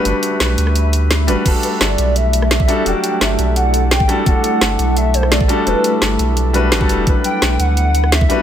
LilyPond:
<<
  \new Staff \with { instrumentName = "Soft synth lead" } { \time 4/4 \key e \minor \tempo 4 = 171 r1 | r8 b'8 d''4 e''4 e''4 | g''4 e''4 fis''4 g''8 g''8 | fis''2 e''8 c''8 d''4 |
b'4 r2. | r8 g''4 fis''4. e''4 | }
  \new Staff \with { instrumentName = "Ambient pad" } { \time 4/4 \key e \minor << { b''1 | d''1~ | d''1 | e''1~ |
e''1 | b'1 | } \\ { <a e''>1 | <a e' a'>1~ | <a e' a'>1~ | <a e' a'>1~ |
<a e' a'>1 | b1 | } >> }
  \new Staff \with { instrumentName = "Grand piano" } { \time 4/4 \key e \minor <g d' fis' b'>2.~ <g d' fis' b'>8 <g d' fis' b'>8 | <g d' fis' a'>2.~ <g d' fis' a'>8 <g d' fis' a'>8 | <fis g d' a'>2.~ <fis g d' a'>8 <g d' fis' a'>8 | <g d' fis' a'>2.~ <g d' fis' a'>8 <g d' fis' a'>8 |
<g d' fis' a'>2~ <g d' fis' a'>8 <g d' fis' b'>8. <g d' fis' a'>8. | <fis g d' b'>2.~ <fis g d' b'>8 <g d' fis' b'>8 | }
  \new Staff \with { instrumentName = "Sub bass" } { \clef bass \time 4/4 \key e \minor g,,8 r8 b,,8 d,2 g,,8 | e,,8 r8 g,,8 b,,2 r8 | e,,8 r8 g,,8 b,,2 r8 | e,,8 r8 g,,8 b,,2 r8 |
e,,8 r8 g,,8 b,,4. g,,8 e,,8 | g,,8 r8 b,,8 d,2 r8 | }
  \new DrumStaff \with { instrumentName = "Drums" } \drummode { \time 4/4 hh8 hh8 <hh sn>8 hh16 ss16 hh8 hh8 <hh sn>8 <hh ss>8 | <cymc hh bd>8 hh8 <hh sn>8 hh8 hh8 hh16 ss16 <hh sn>16 bd16 hh8 | hh8 hh8 <hh sn>8 hh8 hh8 hh8 <hh sn>16 bd16 <hh ss>8 | <hh bd>8 hh8 <hh sn>8 hh8 hh8 hh16 ss16 <hh sn>16 bd16 hh8 |
hh8 hh8 <hh sn>8 hh8 hh8 hh8 <hh sn>16 bd16 <hh ss>8 | <hh bd>8 hh8 <hh sn>8 hh8 hh8 hh16 ss16 <hh sn>16 bd16 hh8 | }
>>